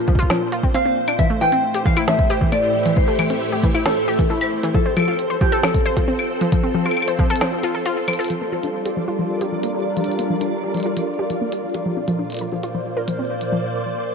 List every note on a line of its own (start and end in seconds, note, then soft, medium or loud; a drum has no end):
0.00 1.19 A#2 medium
0.00 1.19 A#3 medium
0.00 1.77 D4 medium
0.00 0.48 F4 medium
0.00 1.19 F4 medium
0.00 5.63 C5 medium
0.08 0.17 F3 loud
0.08 kick loud
0.15 0.28 F4 loud
0.15 kick medium
0.15 closed hi-hat medium
0.23 kick medium
0.30 0.35 F3 medium
0.30 snare loud
0.30 claves medium
0.52 0.63 F4 medium
0.52 closed hi-hat medium
0.63 0.72 C4 medium
0.63 kick medium
0.74 0.83 C4 loud
0.74 1.19 F5 loud
0.74 closed hi-hat medium
0.86 0.95 C4 medium
1.08 1.13 D4 medium
1.08 closed hi-hat medium
1.08 claves medium
1.19 4.75 A2 medium
1.19 1.28 E3 medium
1.19 8.31 C5 medium
1.19 1.25 E5 loud
1.19 kick loud
1.19 closed hi-hat medium
1.30 1.39 A3 medium
1.41 1.50 E3 loud
1.41 1.85 G5 loud
1.52 4.75 A3 medium
1.52 1.61 C4 medium
1.52 closed hi-hat soft
1.62 4.75 E4 medium
1.62 5.66 G4 medium
1.74 1.85 G4 medium
1.74 closed hi-hat medium
1.86 1.95 E3 loud
1.86 2.07 F5 loud
1.86 kick loud
1.97 2.06 E4 loud
1.97 closed hi-hat medium
1.97 claves medium
2.08 2.13 E3 medium
2.08 2.31 E5 loud
2.08 snare loud
2.19 kick loud
2.30 2.39 G4 loud
2.30 2.36 C5 medium
2.30 closed hi-hat medium
2.41 2.47 E3 medium
2.41 kick medium
2.52 2.61 A3 medium
2.52 2.96 D5 medium
2.52 closed hi-hat medium
2.52 claves soft
2.86 2.91 E3 loud
2.86 closed hi-hat medium
2.97 3.06 E3 medium
2.97 3.59 C5 medium
2.97 kick loud
3.08 3.17 A3 medium
3.19 3.28 E3 loud
3.19 closed hi-hat medium
3.19 claves medium
3.30 3.39 C4 medium
3.30 closed hi-hat medium
3.52 3.63 G4 medium
3.63 3.72 E3 loud
3.63 kick loud
3.63 closed hi-hat medium
3.75 3.83 E4 loud
3.75 claves medium
3.86 3.91 E3 medium
3.86 4.31 A4 loud
3.86 snare loud
3.86 closed hi-hat medium
4.08 4.17 G4 loud
4.19 4.24 E3 medium
4.19 kick medium
4.19 closed hi-hat medium
4.30 4.39 A3 medium
4.30 4.76 E4 medium
4.41 closed hi-hat medium
4.41 claves medium
4.63 4.69 E3 loud
4.63 closed hi-hat medium
4.74 4.83 F3 medium
4.74 9.72 C4 medium
4.74 4.95 A4 loud
4.74 kick loud
4.86 4.95 C4 medium
4.91 12.60 A4 medium
4.97 5.06 F3 loud
4.97 5.41 A4 loud
4.97 closed hi-hat medium
4.97 claves medium
5.00 claves soft
5.05 5.17 F4 medium
5.05 claves soft
5.08 claves soft
5.11 claves soft
5.13 claves soft
5.16 14.15 F4 medium
5.16 closed hi-hat medium
5.16 claves soft
5.30 5.41 C5 medium
5.41 5.50 F3 loud
5.41 5.63 G4 loud
5.41 kick loud
5.52 5.61 A4 loud
5.52 closed hi-hat medium
5.63 5.69 F3 medium
5.63 7.82 A4 loud
5.63 snare loud
5.63 claves medium
5.74 kick loud
5.74 closed hi-hat medium
5.86 5.95 C5 loud
5.97 6.02 F3 medium
5.97 kick medium
5.97 closed hi-hat medium
6.08 6.17 C4 medium
6.19 claves medium
6.41 6.47 F3 loud
6.41 closed hi-hat medium
6.52 6.61 F3 medium
6.52 kick loud
6.52 closed hi-hat medium
6.63 6.72 C4 medium
6.75 6.83 F3 loud
6.86 6.95 F4 medium
6.86 claves soft
6.91 claves soft
6.97 claves medium
7.02 claves medium
7.08 7.18 C5 medium
7.08 closed hi-hat medium
7.19 7.28 F3 loud
7.19 kick loud
7.30 7.39 A4 loud
7.36 closed hi-hat loud
7.41 7.47 F3 medium
7.41 snare loud
7.41 claves medium
7.63 7.72 F4 loud
7.63 closed hi-hat medium
7.75 7.84 A4 medium
7.86 7.96 F4 loud
7.86 closed hi-hat loud
8.08 8.17 F3 medium
8.08 closed hi-hat medium
8.08 claves medium
8.13 closed hi-hat medium
8.19 8.24 A4 medium
8.19 closed hi-hat medium
8.25 closed hi-hat medium
8.28 13.63 D5 medium
8.28 closed hi-hat soft
8.30 8.39 F3 medium
8.30 11.86 G3 medium
8.30 closed hi-hat medium
8.41 8.50 A#3 medium
8.52 8.61 F3 loud
8.63 8.72 D4 medium
8.63 12.63 D4 medium
8.63 closed hi-hat medium
8.74 13.07 A#4 medium
8.86 8.96 G4 medium
8.86 closed hi-hat medium
8.97 9.06 F3 medium
9.08 9.17 F4 loud
9.19 9.24 F3 medium
9.41 9.50 G4 loud
9.41 closed hi-hat medium
9.52 9.58 F3 medium
9.63 9.72 A#3 medium
9.63 closed hi-hat medium
9.97 10.02 F3 loud
9.97 closed hi-hat soft
10.04 10.17 F3 medium
10.04 closed hi-hat soft
10.12 closed hi-hat soft
10.19 10.28 A#3 medium
10.19 closed hi-hat medium
10.30 10.39 F3 medium
10.41 10.50 D4 medium
10.41 closed hi-hat loud
10.63 10.74 G4 medium
10.74 10.83 F3 loud
10.74 closed hi-hat soft
10.77 closed hi-hat soft
10.80 closed hi-hat soft
10.83 10.95 F4 loud
10.83 closed hi-hat soft
10.97 11.02 F3 medium
10.97 closed hi-hat loud
11.19 11.28 G4 loud
11.30 11.35 F3 medium
11.30 closed hi-hat medium
11.41 11.50 A#3 medium
11.52 closed hi-hat medium
11.75 11.80 F3 loud
11.75 closed hi-hat medium
11.86 14.15 A#2 medium
11.86 11.95 F3 medium
11.97 12.06 C4 medium
12.05 12.17 F3 loud
12.05 14.15 A#3 medium
12.05 closed hi-hat medium
12.16 12.28 D4 medium
12.16 14.15 C5 medium
12.30 closed hi-hat soft
12.32 closed hi-hat soft
12.35 closed hi-hat medium
12.37 closed hi-hat medium
12.39 12.52 A#4 medium
12.39 closed hi-hat medium
12.52 12.61 F3 loud
12.63 12.72 F4 loud
12.63 closed hi-hat soft
12.75 12.80 F3 medium
12.75 14.15 D5 medium
12.97 13.06 A#4 loud
13.08 13.13 F3 medium
13.08 closed hi-hat loud
13.19 13.28 C4 medium
13.41 closed hi-hat medium
13.52 13.58 F3 loud